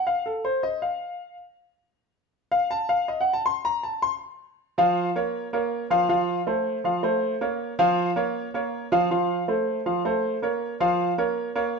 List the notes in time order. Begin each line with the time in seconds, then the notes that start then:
0.07 F5
0.26 A4
0.45 C5
0.63 D#5
0.82 F5
2.52 F5
2.71 A5
2.89 F5
3.08 D#5
3.21 F#5
3.33 A5
3.46 C6
3.65 A#5
3.83 A5
4.02 C6
4.78 F3 F4 F5
5.16 A#3 A#4 C#5
5.53 A#3 A#4 C#5
5.90 F3 F4 F5
6.09 F3 F4 F5
6.47 A3 A4 C5
6.84 F3 F4 F5
7.03 A3 A4 C5
7.41 A#3 A#4 C#5
7.79 F3 F4 F5
8.16 A#3 A#4 C#5
8.54 A#3 A#4 C#5
8.92 F3 F4 F5
9.11 F3 F4 F5
9.48 A3 A4 C5
9.86 F3 F4 F5
10.05 A3 A4 C5
10.42 A#3 A#4 C#5
10.80 F3 F4 F5
11.18 A#3 A#4 C#5
11.55 A#3 A#4 C#5